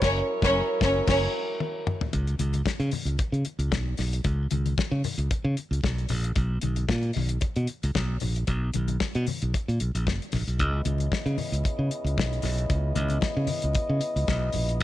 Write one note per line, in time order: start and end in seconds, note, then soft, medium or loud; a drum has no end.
0.00 0.20 F#1 loud
0.00 2.11 F#3 medium
0.00 0.21 C#4 medium
0.00 2.11 E4 medium
0.00 2.11 A#4 medium
0.00 0.25 C#5 medium
0.00 0.21 C#5 loud
0.00 kick loud
0.00 snare loud
0.00 crash medium
0.42 0.60 F#1 loud
0.42 0.61 C#4 loud
0.42 0.61 C#5 loud
0.42 kick loud
0.42 snare loud
0.81 0.99 F#1 loud
0.81 1.00 C#4 loud
0.81 1.01 C#5 medium
0.81 kick loud
0.81 snare loud
1.07 1.26 F#1 loud
1.07 1.26 C#4 loud
1.07 1.26 C#5 loud
1.07 kick loud
1.07 snare loud
1.07 crash medium
1.60 high tom medium
1.87 mid tom medium
2.01 floor tom loud
2.13 2.34 C#2 loud
2.13 kick medium
2.13 closed hi-hat medium
2.13 muted conga soft
2.27 closed hi-hat soft
2.39 2.61 C#2 loud
2.39 closed hi-hat medium
2.39 high conga medium
2.53 closed hi-hat soft
2.53 high conga medium
2.66 muted fingered electric bass stroke soft
2.66 kick loud
2.66 snare loud
2.66 muted conga soft
2.80 2.90 C#3 medium
2.80 closed hi-hat soft
2.91 open hi-hat medium
2.91 high conga medium
2.91 low conga medium
3.05 3.16 C#2 medium
3.05 closed hi-hat soft
3.19 muted fingered electric bass stroke soft
3.19 kick loud
3.19 closed hi-hat medium
3.19 muted conga soft
3.32 3.43 C#3 medium
3.32 closed hi-hat soft
3.45 closed hi-hat medium
3.45 muted conga soft
3.59 3.72 C#2 medium
3.59 closed hi-hat soft
3.72 3.93 B1 medium
3.72 kick loud
3.72 snare loud
3.72 muted conga soft
3.97 4.20 B1 medium
3.97 snare soft
3.97 open hi-hat medium
3.97 low conga medium
4.13 closed hi-hat soft
4.24 4.46 C#2 loud
4.24 kick loud
4.24 closed hi-hat medium
4.24 muted conga soft
4.51 4.73 C#2 medium
4.51 closed hi-hat medium
4.51 muted conga soft
4.51 high conga medium
4.66 closed hi-hat soft
4.66 high conga medium
4.78 muted fingered electric bass stroke soft
4.78 kick loud
4.78 snare loud
4.78 muted conga soft
4.91 5.01 C#3 loud
5.04 open hi-hat medium
5.04 high conga medium
5.04 low conga medium
5.18 5.28 C#2 medium
5.18 closed hi-hat medium
5.31 muted fingered electric bass stroke soft
5.31 kick loud
5.31 closed hi-hat medium
5.31 muted conga soft
5.44 5.54 C#3 medium
5.57 closed hi-hat soft
5.57 muted conga soft
5.71 5.81 C#2 medium
5.71 closed hi-hat soft
5.84 6.05 B1 medium
5.84 kick loud
5.84 snare loud
5.98 closed hi-hat soft
6.09 6.31 A#1 medium
6.09 open hi-hat medium
6.09 low conga medium
6.24 closed hi-hat soft
6.36 6.58 B1 loud
6.36 kick loud
6.36 closed hi-hat medium
6.36 muted conga soft
6.61 6.84 B1 medium
6.61 closed hi-hat medium
6.61 high conga medium
6.76 closed hi-hat soft
6.76 high conga medium
6.89 7.10 A#2 loud
6.89 kick loud
6.89 snare loud
7.03 closed hi-hat soft
7.13 7.37 B1 medium
7.13 open hi-hat medium
7.13 muted conga soft
7.13 high conga medium
7.13 low conga medium
7.29 closed hi-hat soft
7.41 muted fingered electric bass stroke soft
7.41 kick loud
7.41 closed hi-hat medium
7.41 muted conga soft
7.56 7.66 B2 medium
7.56 closed hi-hat soft
7.67 closed hi-hat soft
7.67 muted conga soft
7.83 7.93 C#2 medium
7.83 closed hi-hat soft
7.95 8.16 B1 medium
7.95 kick loud
7.95 snare medium
7.95 muted conga soft
8.20 8.43 A#1 medium
8.20 open hi-hat medium
8.20 muted conga soft
8.20 low conga medium
8.36 closed hi-hat soft
8.47 8.69 B1 medium
8.47 kick medium
8.47 closed hi-hat medium
8.47 muted conga soft
8.74 8.96 B1 medium
8.74 closed hi-hat medium
8.74 muted conga soft
8.74 high conga medium
8.88 closed hi-hat soft
8.88 high conga medium
9.00 kick loud
9.00 snare loud
9.00 muted conga soft
9.15 9.25 B2 medium
9.15 closed hi-hat soft
9.27 open hi-hat medium
9.27 high conga medium
9.27 low conga medium
9.42 9.52 B1 medium
9.42 closed hi-hat soft
9.54 kick loud
9.54 closed hi-hat medium
9.54 muted conga soft
9.68 9.78 A#2 medium
9.68 closed hi-hat soft
9.80 9.92 B1 medium
9.80 closed hi-hat soft
9.95 10.04 A#1 medium
9.95 closed hi-hat soft
10.07 10.18 F#1 medium
10.07 kick loud
10.07 snare loud
10.07 muted conga soft
10.22 closed hi-hat soft
10.32 10.44 A#1 medium
10.32 kick medium
10.32 snare soft
10.32 open hi-hat medium
10.32 muted conga soft
10.32 low conga medium
10.47 10.59 B1 medium
10.47 closed hi-hat soft
10.59 10.80 C#2 medium
10.59 14.77 C#3 medium
10.59 14.83 B3 medium
10.59 14.77 E4 medium
10.59 14.83 D#5 medium
10.59 kick medium
10.59 closed hi-hat medium
10.85 11.07 C#2 loud
10.85 closed hi-hat medium
10.85 high conga medium
10.98 closed hi-hat soft
10.98 high conga medium
11.12 kick loud
11.12 snare loud
11.26 11.36 C#3 loud
11.26 closed hi-hat soft
11.38 open hi-hat medium
11.38 muted conga soft
11.38 high conga medium
11.38 low conga medium
11.52 11.62 C#2 medium
11.52 closed hi-hat soft
11.64 muted fingered electric bass stroke soft
11.64 kick loud
11.64 closed hi-hat medium
11.64 muted conga soft
11.79 11.89 C#3 medium
11.91 closed hi-hat medium
11.91 muted conga soft
12.04 12.18 C#2 medium
12.04 closed hi-hat soft
12.18 12.39 B1 medium
12.18 kick loud
12.18 snare loud
12.33 closed hi-hat soft
12.42 12.65 B1 medium
12.42 snare soft
12.42 open hi-hat medium
12.42 muted conga soft
12.42 low conga medium
12.59 closed hi-hat soft
12.70 12.91 C#2 medium
12.70 kick loud
12.70 closed hi-hat medium
12.70 muted conga soft
12.95 13.17 C#2 loud
12.95 closed hi-hat medium
12.95 high conga medium
13.09 closed hi-hat soft
13.09 high conga medium
13.21 kick loud
13.21 snare loud
13.21 muted conga soft
13.37 13.47 C#3 medium
13.47 open hi-hat medium
13.47 muted conga soft
13.47 high conga medium
13.47 low conga medium
13.62 13.74 C#2 medium
13.62 closed hi-hat soft
13.73 muted fingered electric bass stroke soft
13.73 kick loud
13.73 closed hi-hat medium
13.73 muted conga soft
13.89 14.00 C#3 medium
14.01 closed hi-hat medium
14.01 muted conga soft
14.16 14.26 C#2 medium
14.16 closed hi-hat soft
14.27 14.50 B1 medium
14.27 kick loud
14.27 snare loud
14.27 muted conga soft
14.52 14.81 A#1 medium
14.52 open hi-hat medium
14.52 low conga medium
14.69 closed hi-hat soft
14.80 muted conga soft